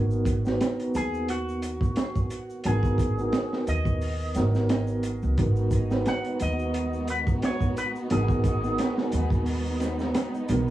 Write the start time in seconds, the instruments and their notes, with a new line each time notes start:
Already playing: upright bass G#1, felt piano B3 D#4 F#4 A#4
0.11 shaker
0.25 kick, closed hi-hat, shaker
0.45 felt piano B3 D#4 F#4 B4, snare, shaker
0.60 snare, closed hi-hat, shaker
0.80 closed hi-hat
0.94 upright bass D#2, clean electric guitar G#4, closed hi-hat, shaker
1.14 shaker
1.28 clean electric guitar F#4, closed hi-hat, shaker
1.49 shaker
1.62 closed hi-hat, shaker
1.81 kick, shaker
1.96 snare, closed hi-hat, shaker
2.16 kick, shaker
2.30 closed hi-hat, shaker
2.50 shaker
2.64 upright bass G#1, felt piano B3 D#4 F#4 A#4, clean electric guitar G#4, closed hi-hat, shaker
2.83 kick, shaker
2.98 kick, closed hi-hat, shaker
3.18 felt piano B3 D#4 F#4 A#4, shaker
3.33 snare, closed hi-hat, shaker
3.53 snare
3.67 upright bass D#2, clean electric guitar D#5, closed hi-hat, shaker
3.85 kick, shaker
4.01 open hi-hat, shaker
4.20 shaker
4.34 upright bass G#1, felt piano B3 D#4 F#4 A#4, snare, closed hi-hat, shaker
4.54 snare, shaker
4.69 snare, closed hi-hat, shaker
4.87 shaker
5.03 closed hi-hat, shaker
5.22 upright bass C#2, shaker
5.38 upright bass G#1, string section G#3 B3 D#4 F#4, felt piano B3 D#4 F#4 A#4, kick, closed hi-hat, shaker
5.56 shaker
5.71 kick, closed hi-hat, shaker
5.91 felt piano B3 D#4 F#4 B4, snare, shaker
6.05 clean electric guitar F#5, snare, closed hi-hat, shaker
6.24 closed hi-hat
6.39 upright bass D#2, clean electric guitar D#5, closed hi-hat, shaker
6.59 shaker
6.74 closed hi-hat, shaker
6.93 shaker
7.08 clean electric guitar B4, closed hi-hat, shaker
7.27 kick, shaker
7.42 clean electric guitar C#5, snare, closed hi-hat, shaker
7.60 kick, shaker
7.77 clean electric guitar B4, closed hi-hat, shaker
7.95 shaker
8.10 upright bass G#1, felt piano B3 D#4 F#4 A#4, clean electric guitar G#4, closed hi-hat, shaker
8.28 kick, shaker
8.44 kick, closed hi-hat, shaker
8.63 felt piano B3 D#4 F#4 A#4, shaker
8.78 snare, closed hi-hat, shaker
8.98 snare
9.12 upright bass D#2, closed hi-hat, shaker
9.30 kick, shaker
9.46 open hi-hat, shaker
9.65 shaker
9.80 snare, closed hi-hat, shaker
9.99 snare, shaker
10.14 snare, closed hi-hat, shaker
10.34 shaker
10.49 upright bass B1, felt piano B3 D#4 F#4 A#4, closed hi-hat, shaker